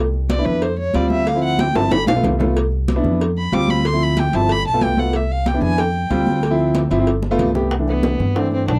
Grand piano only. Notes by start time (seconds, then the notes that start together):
0.38 B3 D4 E4
0.95 G3 C4 F4
1.35 F3 C4 E4
1.75 F3 C4 E4
1.83 F3 C4 E4
2.16 A3 B3 F4
2.39 A3 B3 F4
2.96 B3 D4 E4
3.53 G3 C4 F4
3.93 F3 C4 E4
4.34 F3 C4 E4
4.41 F3 C4 E4
4.74 A3 B3 F4
4.98 A3 B3 F4
5.54 B3 D4 E4
6.10 G3 C4 F4
6.50 F3 C4 E4
6.91 F3 C4 E4
6.99 F3 C4 E4
7.31 A3 B3 F4
7.54 A3 B3 G4
7.79 E3 A3 D4
8.35 E3 A3 D4